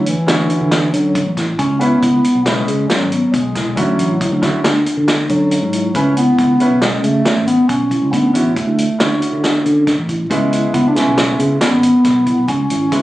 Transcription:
Already playing: D2
0.06 E3, closed hi-hat
0.27 D2 D3 C#4 D4 E4 F#4, snare, closed hi-hat
0.50 closed hi-hat
0.61 D3
0.71 D4, snare, closed hi-hat
0.93 D3 F#3 C#4, closed hi-hat
1.15 kick, closed hi-hat
1.26 A1
1.37 E4, kick, snare, closed hi-hat
1.59 C#2 C#4, kick, closed hi-hat
1.79 C#3 B3 C#4 E4 B4, closed hi-hat
2.03 C#2 E4, kick, closed hi-hat
2.24 closed hi-hat
2.35 B1
2.45 C#3 G#3 C#4 E4 B4, snare, closed hi-hat
2.68 C#3, closed hi-hat
2.88 F#3 C#4, snare, closed hi-hat
3.01 G#1
3.12 B3, closed hi-hat
3.32 B1 G#3, kick, closed hi-hat
3.55 E4, kick, snare, closed hi-hat
3.66 B1
3.76 D2 D3 F#3 C#4 E4 F#4, kick, closed hi-hat
3.99 A1 E4, closed hi-hat
4.21 E4, kick, closed hi-hat
4.32 D2
4.42 D3 C#4 E4 F#4, kick, snare, closed hi-hat
4.64 D2 D4, snare, closed hi-hat
4.86 closed hi-hat
4.97 D3
5.08 D4, snare, closed hi-hat
5.29 D3 F#3 C#4, kick, closed hi-hat
5.51 closed hi-hat
5.62 G#2
5.73 E4, closed hi-hat
5.94 C#2 C#3 C#4 E4 B4, kick, closed hi-hat
6.17 B3 E4, closed hi-hat
6.38 C#2 E4, kick, closed hi-hat
6.59 C#3 C#4 E4 B4, closed hi-hat
6.71 B1
6.82 G#3 C#4, snare, closed hi-hat
7.04 C#3 A3, closed hi-hat
7.25 C#4, snare, closed hi-hat
7.36 G#1
7.47 B3, closed hi-hat
7.69 B1 C#4, kick, closed hi-hat
7.91 E4, kick, closed hi-hat
8.02 C#2
8.12 D2 B3 C#4, kick, closed hi-hat
8.33 A1 D3 C#4 E4 F#4, closed hi-hat
8.56 A3 E4, kick, closed hi-hat
8.67 D2
8.78 closed hi-hat
8.99 D2 D3 C#4 D4 E4 F#4, snare, closed hi-hat
9.22 closed hi-hat
9.32 D3
9.43 D4, snare, closed hi-hat
9.65 D3 C#4, closed hi-hat
9.87 kick, snare, closed hi-hat
9.98 A1
10.09 E4, kick, closed hi-hat
10.30 C#2 C#3 G#3 B3 C#4 E4, kick, closed hi-hat
10.52 E4, closed hi-hat
10.74 C#2 B3 E4, kick, closed hi-hat
10.88 D4
10.94 C#3 G#3 B3 C#4 E4, snare, closed hi-hat
11.07 B1
11.17 C#4, snare, closed hi-hat
11.39 C#3, closed hi-hat
11.61 B3 C#4, snare, closed hi-hat
11.72 G#1
11.83 B3, closed hi-hat
12.05 B1, kick, snare, closed hi-hat
12.26 E4, kick, closed hi-hat
12.38 B1
12.48 C#2 C#4, kick, closed hi-hat
12.70 E4, closed hi-hat
12.91 C#3 G#3 B3 E4, kick, closed hi-hat

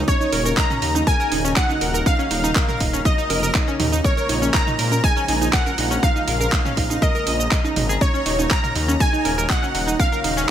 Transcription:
Already playing: C#3 F#3 A#3
0.08 D#4 C#5 A#5, kick, high conga, shaker
0.21 D#4, shaker
0.33 D#1 A#4, open hi-hat
0.45 A#4, high conga, shaker
0.57 D#4 A#5, kick, clap, shaker
0.70 C#4, mid tom, shaker
0.82 D#2 D#4, open hi-hat
0.95 D#4, high conga, shaker
1.07 A#4 G#5, kick, shaker
1.20 A#4, shaker
1.32 D#1 D#4, open hi-hat, high conga
1.45 C#4, shaker
1.56 D#4 F#5, kick, clap, shaker
1.69 D#4, high conga, shaker
1.81 D#1 A#4, open hi-hat
1.94 A#4, shaker
2.06 D#4 F5, kick, high conga, shaker
2.19 C#4, shaker
2.31 D#1 D#4, open hi-hat
2.44 D#4, high conga, shaker
2.55 A#4, kick, clap, shaker
2.69 A#4, mid tom, shaker
2.80 D#1 D#4, kick, open hi-hat
2.93 C#4, high conga, shaker
3.05 D#4 D#5, kick, shaker
3.18 D#4, shaker
3.30 F1 A#4, open hi-hat, high conga
3.43 A#4, shaker
3.54 D#4, kick, clap, shaker
3.68 C#4, high conga, shaker
3.80 D#2 D#4, mid tom, open hi-hat
3.93 D#4, shaker
4.04 F3 G#3 A#4 C#5, kick, high conga, shaker
4.17 A#4, shaker
4.29 A#1 D#4, open hi-hat
4.42 C#4, high conga, shaker
4.54 D#4 A#5, kick, clap, shaker
4.67 D#4, mid tom, shaker
4.79 A#2 A#4, open hi-hat
4.92 A#4, high conga, shaker
5.04 D#4 G#5, kick, shaker
5.17 C#4, shaker
5.28 A#1 D#4, open hi-hat, high conga
5.41 D#4, shaker
5.53 A#4 F#5, kick, clap, shaker
5.66 A#4, high conga, shaker
5.78 A#1 D#4, open hi-hat
5.91 C#4, shaker
6.03 D#4 F5, kick, high conga, shaker
6.16 D#4, shaker
6.28 A#1 A#4, open hi-hat
6.40 A#4, high conga, shaker
6.52 D#4, kick, clap, shaker
6.65 C#4, mid tom, shaker
6.77 A#1 D#4, kick, open hi-hat
6.90 D#4, high conga, shaker
7.02 A#4 D#5, kick, shaker
7.15 A#4, shaker
7.27 A#1 D#5, open hi-hat, high conga
7.40 D#5, shaker
7.51 D#5, kick, clap, shaker
7.64 D#4, high conga, shaker
7.76 G#1 D#4, mid tom, open hi-hat
7.89 G#4, shaker
8.01 C#3 F#3 A#3 D#4 C#5, kick, high conga, shaker
8.14 C#4, shaker
8.26 D#1 D#4, open hi-hat
8.39 D#4, high conga, shaker
8.50 A#4 A#5, kick, clap, shaker
8.64 A#4, mid tom, shaker
8.76 D#2 D#4, open hi-hat
8.88 C#4, high conga, shaker
9.00 D#4 G#5, kick, shaker
9.13 D#4, shaker
9.25 D#1 A#4, open hi-hat, high conga
9.38 A#4, shaker
9.50 D#4 F#5, kick, clap, shaker
9.63 C#4, high conga, shaker
9.75 D#1 D#4, open hi-hat
9.87 D#4, shaker
9.99 A#4 F5, kick, high conga, shaker
10.12 A#4, shaker
10.24 D#1 D#4, open hi-hat
10.37 C#4, high conga, shaker

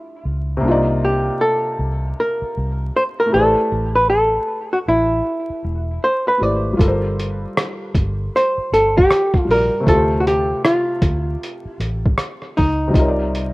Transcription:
Already playing: F3 A3 D4 E4 G4 C5 E5
0.25 C#2
0.57 C3 A#3
0.63 C2 D4
0.68 D#4 F4 D5
1.04 G4
1.41 A4
1.79 C2
2.20 A#4
2.42 muted fingered electric bass stroke
2.57 C2
2.96 C5
3.20 A#4
3.26 A3 E4
3.32 A1 G4 A4 B4
3.37 C5 D5
3.72 A1
3.95 B4
4.10 A4
4.73 F#4
4.88 A1 E4
5.50 muted fingered electric bass stroke
5.64 E1
6.04 C5
6.28 B4
6.38 G#1 A3 E4 G4
6.42 B4 C5 D5
6.73 G3 F4
6.79 G1 A4, kick, closed hi-hat
6.84 A#4 C5
7.20 closed hi-hat
7.57 cross-stick, closed hi-hat
7.95 G1, kick, closed hi-hat
8.36 C5, closed hi-hat
8.58 muted fingered electric bass stroke
8.72 G1 A4, closed hi-hat
8.98 G4, kick
9.11 cross-stick, closed hi-hat
9.34 kick, cross-stick
9.40 F4
9.45 A#1 G3 F4 G4
9.51 A#4 D5, open hi-hat
9.80 C3 A3
9.86 D2 C4 F4 A4, kick, closed hi-hat
9.92 G4 C5
10.20 F#4
10.27 G4, closed hi-hat
10.65 F4, cross-stick, closed hi-hat
11.02 D2, kick, closed hi-hat
11.43 closed hi-hat
11.65 muted fingered electric bass stroke
11.80 A1, closed hi-hat
12.06 kick
12.18 cross-stick, closed hi-hat
12.42 cross-stick
12.57 C#2 D#4, kick, open hi-hat
12.88 C3 G3
12.93 C2 D#4 F4, kick, closed hi-hat
12.99 A#4 C#5
13.08 D5
13.35 closed hi-hat

